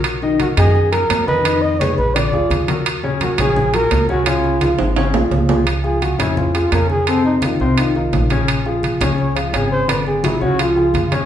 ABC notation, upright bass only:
X:1
M:4/4
L:1/8
Q:1/4=171
K:C#mix
V:1 name="Upright bass" clef=bass
B,,,3 F,,3 E,,2- | E,,3 A,,,2 =D,, ^D,,2- | D,,3 A,,,3 C,,2- | C,,3 G,,,2 B,,, C,,2- |
[K:Db] ^C,,3 F,,3 F,,2- | F,,3 C,,3 B,,,2- | B,,,3 D,,3 A,,,2- | A,,,3 ^C,,3 G,,2 |]